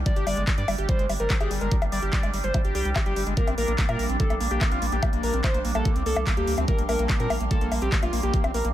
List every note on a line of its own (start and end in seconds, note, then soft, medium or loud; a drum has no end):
0.00 8.73 G3 medium
0.00 8.73 D4 medium
0.00 4.70 G4 medium
0.00 4.20 D5 medium
0.00 4.35 G5 medium
0.06 0.13 G3 medium
0.06 0.16 D5 medium
0.06 kick loud
0.06 closed hi-hat medium
0.16 0.24 G1 medium
0.16 0.26 G4 medium
0.16 closed hi-hat medium
0.27 0.34 G1 loud
0.27 0.37 G3 medium
0.27 0.41 D5 loud
0.27 open hi-hat loud
0.27 high bongo soft
0.37 0.45 G1 medium
0.37 0.44 G#3 medium
0.37 closed hi-hat medium
0.47 0.52 G3 loud
0.47 kick loud
0.47 clap loud
0.47 closed hi-hat medium
0.58 0.65 G2 medium
0.58 0.62 G3 medium
0.58 0.72 D5 loud
0.58 closed hi-hat medium
0.68 0.76 G1 loud
0.68 0.75 G3 medium
0.68 open hi-hat loud
0.68 high bongo medium
0.78 0.86 G1 medium
0.78 0.88 G4 medium
0.78 closed hi-hat medium
0.89 0.99 G3 medium
0.89 1.03 C5 loud
0.89 kick loud
0.89 closed hi-hat medium
0.99 1.07 G1 medium
0.99 1.06 G#3 medium
0.99 closed hi-hat medium
1.09 1.17 G1 loud
1.09 1.14 G3 loud
1.09 open hi-hat loud
1.09 high bongo soft
1.20 1.27 G1 medium
1.20 1.24 G3 medium
1.20 1.29 A#4 medium
1.20 closed hi-hat medium
1.30 1.37 G3 medium
1.30 kick loud
1.30 clap loud
1.30 closed hi-hat medium
1.40 1.48 G1 medium
1.40 1.50 G4 medium
1.40 1.50 G#4 medium
1.40 closed hi-hat medium
1.40 high bongo soft
1.51 1.58 G1 loud
1.51 1.61 G3 medium
1.51 open hi-hat loud
1.61 1.69 G1 medium
1.61 1.68 G#3 medium
1.61 1.76 A#4 medium
1.61 closed hi-hat medium
1.72 1.76 G3 loud
1.72 kick loud
1.72 closed hi-hat medium
1.82 1.89 G1 medium
1.82 1.86 G3 medium
1.82 closed hi-hat medium
1.82 high bongo medium
1.92 2.00 G1 loud
1.92 1.99 G3 medium
1.92 2.02 D5 medium
1.92 open hi-hat loud
2.03 2.10 G1 medium
2.03 2.12 G4 medium
2.03 closed hi-hat medium
2.13 2.23 G3 medium
2.13 2.27 D5 loud
2.13 kick loud
2.13 clap loud
2.13 closed hi-hat medium
2.23 2.31 G1 medium
2.23 2.30 G#3 medium
2.23 closed hi-hat medium
2.23 high bongo soft
2.34 2.41 G1 loud
2.34 2.38 G3 loud
2.34 open hi-hat loud
2.44 2.51 G1 medium
2.44 2.48 G3 medium
2.44 2.58 C5 loud
2.44 closed hi-hat medium
2.54 2.62 G3 medium
2.54 kick loud
2.54 closed hi-hat medium
2.54 high bongo soft
2.65 2.72 G#1 medium
2.65 2.74 G4 medium
2.65 closed hi-hat medium
2.75 2.82 C2 loud
2.75 2.85 G3 loud
2.75 2.89 G4 loud
2.75 open hi-hat loud
2.85 2.93 C2 medium
2.85 2.90 G3 medium
2.85 closed hi-hat medium
2.96 3.00 G4 loud
2.96 kick loud
2.96 clap loud
2.96 closed hi-hat medium
2.96 high bongo medium
3.06 3.13 G1 medium
3.06 3.13 G3 medium
3.06 3.20 G4 medium
3.06 closed hi-hat medium
3.16 3.24 G1 loud
3.16 3.24 G3 loud
3.16 open hi-hat loud
3.27 3.34 G1 medium
3.27 3.34 G#3 medium
3.27 closed hi-hat medium
3.37 3.47 A#3 medium
3.37 8.73 A#4 medium
3.37 3.47 A#4 medium
3.37 kick loud
3.37 closed hi-hat medium
3.47 3.55 A#1 medium
3.47 3.55 C4 medium
3.47 closed hi-hat medium
3.47 high bongo soft
3.58 3.65 A#1 loud
3.58 3.62 A#3 loud
3.58 3.72 A#4 loud
3.58 open hi-hat loud
3.68 3.76 A#1 loud
3.68 3.72 A#3 medium
3.68 closed hi-hat medium
3.75 3.86 A#3 medium
3.75 8.73 F5 medium
3.75 8.73 C6 medium
3.75 kick loud
3.75 clap loud
3.75 closed hi-hat medium
3.89 3.96 A#2 medium
3.89 3.99 A#3 medium
3.89 4.03 A#4 loud
3.89 closed hi-hat medium
3.89 high bongo medium
3.99 4.07 A#1 loud
3.99 4.09 A#3 medium
3.99 open hi-hat loud
4.09 4.17 A#1 medium
4.09 4.17 C4 medium
4.09 closed hi-hat medium
4.20 4.24 A#3 loud
4.20 4.34 A4 loud
4.20 kick loud
4.20 closed hi-hat medium
4.30 4.38 A#1 medium
4.30 4.34 A#3 medium
4.30 closed hi-hat medium
4.30 high bongo soft
4.40 4.48 A#1 loud
4.40 4.48 A#3 medium
4.40 open hi-hat loud
4.51 4.58 A#1 medium
4.51 4.61 A#3 medium
4.51 4.60 G4 loud
4.51 closed hi-hat medium
4.61 4.71 A#3 medium
4.61 kick loud
4.61 clap loud
4.61 closed hi-hat medium
4.61 high bongo soft
4.72 4.79 A#1 medium
4.72 4.79 C4 medium
4.72 4.81 F4 medium
4.72 closed hi-hat medium
4.82 4.89 A#1 loud
4.82 4.86 A#3 loud
4.82 open hi-hat loud
4.92 5.00 A#1 medium
4.92 4.97 A#3 medium
4.92 5.07 G4 medium
4.92 closed hi-hat medium
5.03 5.10 A#3 medium
5.03 kick loud
5.03 closed hi-hat medium
5.03 high bongo medium
5.13 5.20 A#1 medium
5.13 5.23 A#3 medium
5.13 closed hi-hat medium
5.23 5.31 A#1 loud
5.23 5.33 A#3 medium
5.23 5.33 A#4 medium
5.23 open hi-hat loud
5.34 5.41 A#1 medium
5.34 5.41 C4 medium
5.34 closed hi-hat medium
5.44 5.48 A#3 loud
5.44 5.58 C5 loud
5.44 kick loud
5.44 clap loud
5.44 closed hi-hat medium
5.44 high bongo soft
5.54 5.62 A#1 medium
5.54 5.59 A#3 medium
5.54 closed hi-hat medium
5.65 5.72 A#1 loud
5.65 5.72 A#3 medium
5.65 open hi-hat loud
5.75 5.82 A#1 medium
5.75 5.85 A#3 medium
5.75 5.89 A4 loud
5.75 closed hi-hat medium
5.75 high bongo soft
5.85 5.95 A#3 medium
5.85 kick loud
5.85 closed hi-hat medium
5.96 6.03 C2 medium
5.96 6.03 C4 medium
5.96 closed hi-hat medium
6.06 6.13 C2 loud
6.06 6.10 A#3 loud
6.06 6.20 A4 loud
6.06 open hi-hat loud
6.16 6.24 C2 medium
6.16 6.21 A#3 medium
6.16 closed hi-hat medium
6.16 high bongo medium
6.27 6.34 A#3 medium
6.27 kick loud
6.27 clap loud
6.27 closed hi-hat medium
6.37 6.45 D2 medium
6.37 6.47 A#3 medium
6.37 6.51 G4 medium
6.37 closed hi-hat medium
6.47 6.55 D2 medium
6.47 6.57 A#3 medium
6.47 open hi-hat loud
6.58 6.65 D2 medium
6.58 6.65 C4 medium
6.58 closed hi-hat medium
6.58 high bongo soft
6.68 6.72 A#3 loud
6.68 6.78 A#4 loud
6.68 kick loud
6.68 closed hi-hat medium
6.78 6.86 A#1 medium
6.78 6.83 A#3 medium
6.78 closed hi-hat medium
6.89 6.96 A#1 loud
6.89 6.96 A#3 medium
6.89 7.03 A#4 medium
6.89 open hi-hat loud
6.89 high bongo soft
6.99 7.07 A#1 medium
6.99 7.09 A#3 medium
6.99 closed hi-hat medium
7.09 7.19 A#3 medium
7.09 kick loud
7.09 clap loud
7.09 closed hi-hat medium
7.20 7.27 A#2 medium
7.20 7.27 C4 medium
7.20 7.34 A#4 loud
7.20 closed hi-hat medium
7.30 7.38 A#1 loud
7.30 7.35 A#3 loud
7.30 open hi-hat loud
7.30 high bongo medium
7.40 7.48 A#1 medium
7.40 7.45 A#3 medium
7.40 closed hi-hat medium
7.51 7.58 A#3 medium
7.51 7.65 A4 loud
7.51 kick loud
7.51 closed hi-hat medium
7.61 7.69 A#1 medium
7.61 7.71 A#3 medium
7.61 closed hi-hat medium
7.72 7.79 A#1 loud
7.72 7.81 A#3 medium
7.72 open hi-hat loud
7.72 high bongo soft
7.82 7.89 A#1 medium
7.82 7.89 C4 medium
7.82 7.91 G4 medium
7.82 closed hi-hat medium
7.92 7.97 A#3 loud
7.92 kick loud
7.92 clap loud
7.92 closed hi-hat medium
8.03 8.10 A#1 medium
8.03 8.07 A#3 medium
8.03 8.12 F4 medium
8.03 closed hi-hat medium
8.03 high bongo soft
8.13 8.20 A#1 loud
8.13 8.20 A#3 medium
8.13 open hi-hat loud
8.23 8.31 A#1 medium
8.23 8.33 A#3 medium
8.23 8.38 G4 loud
8.23 closed hi-hat medium
8.34 8.43 A#3 medium
8.34 kick loud
8.34 closed hi-hat medium
8.44 8.51 A#1 medium
8.44 8.51 C4 medium
8.44 closed hi-hat medium
8.44 high bongo medium
8.54 8.62 A#1 loud
8.54 8.59 A#3 loud
8.54 8.64 A#4 medium
8.54 open hi-hat loud
8.65 8.72 A#1 loud
8.65 8.69 A#3 medium
8.65 closed hi-hat medium